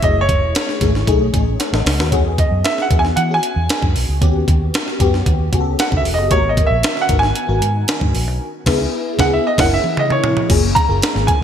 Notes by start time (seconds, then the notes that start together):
0.02 F#1 A3 C#4 E4 G#4 D#5, kick, closed hi-hat
0.21 C#5
0.29 kick, closed hi-hat
0.42 E1
0.55 snare, closed hi-hat
0.69 snare
0.81 G#1 A3 C#4 E4 G#4, kick, snare, closed hi-hat
0.95 snare
1.07 B1 A3 C#4 D#4 G#4, kick, closed hi-hat
1.34 A1 A3 C#4 D#4 G#4, kick, closed hi-hat
1.59 C#5 F#5, snare, closed hi-hat
1.73 A1 A4 D#5, snare
1.86 C#2 G#4 C#5, snare, open hi-hat
1.99 D#2 F#4 B4, snare
2.12 E2 B3 C#4 F#4 G#4, kick, closed hi-hat
2.38 D#5, kick, closed hi-hat
2.51 F#2
2.65 E5, snare, closed hi-hat
2.78 F#5, snare
2.91 E2 B3 C#4 F#4 G#4, kick, closed hi-hat
2.99 G#5
3.05 snare
3.16 E3 F#5, closed hi-hat
3.30 B3 C#4 F#4 G#4
3.34 G#5
3.43 closed hi-hat
3.56 E2
3.69 snare, closed hi-hat
3.83 F#2, kick
3.96 B1, open hi-hat
4.09 C#2
4.21 D#2 B3 C#4 F#4 G4, kick, closed hi-hat
4.48 D#2, kick, closed hi-hat
4.74 snare, closed hi-hat
4.88 snare
5.00 F#2 B3 C#4 F#4 G4, kick, closed hi-hat
5.14 snare
5.26 D#2, kick, closed hi-hat
5.53 C#2 B3 C#4 F#4 G#4, kick, closed hi-hat
5.60 A4
5.79 F#5, snare, closed hi-hat
5.92 C#2, kick
5.97 E5
6.05 E1, open hi-hat
6.14 F#1 D#5
6.31 G#1 D#3 A#3 F#4 A#4 C#5, kick, closed hi-hat
6.37 B3
6.49 D#5
6.57 kick, closed hi-hat
6.66 E5
6.71 A#1
6.83 snare, closed hi-hat
6.97 snare
7.01 F#5
7.09 G#1 B3 D#4 F#4 A#4, kick, closed hi-hat
7.19 G#5
7.23 snare
7.36 closed hi-hat
7.48 G#1 B3 D#4 F#4 A#4
7.62 G#2, closed hi-hat
7.88 snare, closed hi-hat
8.01 G#2, kick
8.14 A#1, open hi-hat
8.27 B1
8.66 C#2 B3 E4 G#4, kick, snare, crash
9.18 C#2 B3 E4 G#4 F#5, kick, snare
9.33 E5
9.47 D#5
9.58 F#1 A#3 C#4 E4 G#4 F#5, kick, snare, crash
9.74 E5
9.84 mid tom
9.97 D#5, mid tom
10.10 C#5, mid tom
10.24 floor tom
10.37 floor tom
10.49 F#1 A#3 C#4 F4 G#4, kick, closed hi-hat, crash
10.75 A#5, kick, closed hi-hat
10.88 F#1 A#3 C#4 F4 G#4
11.02 snare, closed hi-hat
11.15 G#1 A#3 C#4 F4 G#4, snare
11.27 G#5, kick, closed hi-hat